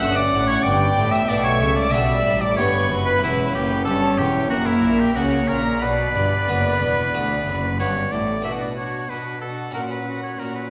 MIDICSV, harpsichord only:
0, 0, Header, 1, 2, 480
1, 0, Start_track
1, 0, Key_signature, 2, "minor"
1, 0, Tempo, 643777
1, 482, Time_signature, 4, 2, 24, 8
1, 3842, Tempo, 659341
1, 6242, Tempo, 647249
1, 7911, End_track
2, 0, Start_track
2, 0, Title_t, "Harpsichord"
2, 0, Program_c, 0, 6
2, 9, Note_on_c, 0, 57, 59
2, 10, Note_on_c, 0, 43, 72
2, 12, Note_on_c, 0, 62, 55
2, 14, Note_on_c, 0, 66, 63
2, 222, Note_off_c, 0, 43, 0
2, 250, Note_on_c, 0, 45, 66
2, 352, Note_off_c, 0, 57, 0
2, 354, Note_off_c, 0, 62, 0
2, 355, Note_off_c, 0, 66, 0
2, 462, Note_off_c, 0, 45, 0
2, 485, Note_on_c, 0, 43, 67
2, 699, Note_off_c, 0, 43, 0
2, 729, Note_on_c, 0, 45, 67
2, 941, Note_off_c, 0, 45, 0
2, 966, Note_on_c, 0, 47, 71
2, 966, Note_on_c, 0, 59, 54
2, 969, Note_on_c, 0, 62, 56
2, 972, Note_on_c, 0, 67, 59
2, 1136, Note_off_c, 0, 59, 0
2, 1138, Note_off_c, 0, 62, 0
2, 1179, Note_off_c, 0, 47, 0
2, 1203, Note_on_c, 0, 49, 64
2, 1312, Note_off_c, 0, 67, 0
2, 1417, Note_off_c, 0, 49, 0
2, 1440, Note_on_c, 0, 59, 66
2, 1441, Note_on_c, 0, 47, 71
2, 1444, Note_on_c, 0, 62, 65
2, 1447, Note_on_c, 0, 67, 70
2, 1613, Note_off_c, 0, 59, 0
2, 1615, Note_off_c, 0, 62, 0
2, 1656, Note_off_c, 0, 47, 0
2, 1685, Note_on_c, 0, 45, 64
2, 1789, Note_off_c, 0, 67, 0
2, 1898, Note_off_c, 0, 45, 0
2, 1924, Note_on_c, 0, 43, 74
2, 1924, Note_on_c, 0, 59, 55
2, 1929, Note_on_c, 0, 62, 54
2, 1930, Note_on_c, 0, 67, 62
2, 2095, Note_off_c, 0, 59, 0
2, 2098, Note_off_c, 0, 62, 0
2, 2138, Note_off_c, 0, 43, 0
2, 2167, Note_on_c, 0, 42, 60
2, 2271, Note_off_c, 0, 67, 0
2, 2379, Note_off_c, 0, 42, 0
2, 2404, Note_on_c, 0, 40, 73
2, 2617, Note_off_c, 0, 40, 0
2, 2647, Note_on_c, 0, 42, 62
2, 2859, Note_off_c, 0, 42, 0
2, 2883, Note_on_c, 0, 43, 66
2, 2883, Note_on_c, 0, 61, 56
2, 2887, Note_on_c, 0, 67, 56
2, 3098, Note_off_c, 0, 43, 0
2, 3125, Note_on_c, 0, 40, 57
2, 3228, Note_off_c, 0, 61, 0
2, 3231, Note_off_c, 0, 67, 0
2, 3339, Note_off_c, 0, 40, 0
2, 3364, Note_on_c, 0, 42, 70
2, 3580, Note_off_c, 0, 42, 0
2, 3603, Note_on_c, 0, 46, 59
2, 3820, Note_off_c, 0, 46, 0
2, 3847, Note_on_c, 0, 49, 63
2, 3847, Note_on_c, 0, 58, 53
2, 3849, Note_on_c, 0, 61, 57
2, 3852, Note_on_c, 0, 66, 62
2, 4059, Note_off_c, 0, 49, 0
2, 4081, Note_on_c, 0, 46, 58
2, 4190, Note_off_c, 0, 58, 0
2, 4191, Note_off_c, 0, 61, 0
2, 4193, Note_off_c, 0, 66, 0
2, 4297, Note_off_c, 0, 46, 0
2, 4321, Note_on_c, 0, 47, 59
2, 4538, Note_off_c, 0, 47, 0
2, 4567, Note_on_c, 0, 43, 60
2, 4782, Note_off_c, 0, 43, 0
2, 4808, Note_on_c, 0, 42, 61
2, 4808, Note_on_c, 0, 59, 47
2, 4812, Note_on_c, 0, 62, 53
2, 4814, Note_on_c, 0, 66, 56
2, 5023, Note_off_c, 0, 42, 0
2, 5050, Note_on_c, 0, 40, 59
2, 5154, Note_off_c, 0, 59, 0
2, 5156, Note_off_c, 0, 62, 0
2, 5158, Note_off_c, 0, 66, 0
2, 5265, Note_off_c, 0, 40, 0
2, 5286, Note_on_c, 0, 38, 71
2, 5289, Note_on_c, 0, 59, 60
2, 5290, Note_on_c, 0, 62, 59
2, 5293, Note_on_c, 0, 66, 65
2, 5502, Note_off_c, 0, 38, 0
2, 5528, Note_on_c, 0, 42, 60
2, 5632, Note_off_c, 0, 59, 0
2, 5633, Note_off_c, 0, 62, 0
2, 5635, Note_off_c, 0, 66, 0
2, 5741, Note_off_c, 0, 42, 0
2, 5765, Note_on_c, 0, 43, 58
2, 5765, Note_on_c, 0, 59, 47
2, 5768, Note_on_c, 0, 62, 52
2, 5769, Note_on_c, 0, 66, 54
2, 5980, Note_off_c, 0, 43, 0
2, 6003, Note_on_c, 0, 45, 54
2, 6108, Note_off_c, 0, 59, 0
2, 6111, Note_off_c, 0, 62, 0
2, 6111, Note_off_c, 0, 66, 0
2, 6211, Note_on_c, 0, 59, 29
2, 6218, Note_off_c, 0, 45, 0
2, 6220, Note_on_c, 0, 62, 29
2, 6232, Note_on_c, 0, 66, 31
2, 6243, Note_on_c, 0, 47, 34
2, 6647, Note_off_c, 0, 47, 0
2, 6727, Note_on_c, 0, 47, 34
2, 7128, Note_off_c, 0, 47, 0
2, 7159, Note_off_c, 0, 59, 0
2, 7164, Note_off_c, 0, 62, 0
2, 7170, Note_off_c, 0, 66, 0
2, 7175, Note_on_c, 0, 61, 35
2, 7186, Note_on_c, 0, 66, 37
2, 7208, Note_on_c, 0, 46, 36
2, 7608, Note_off_c, 0, 46, 0
2, 7686, Note_on_c, 0, 46, 35
2, 7911, Note_off_c, 0, 46, 0
2, 7911, Note_off_c, 0, 61, 0
2, 7911, Note_off_c, 0, 66, 0
2, 7911, End_track
0, 0, End_of_file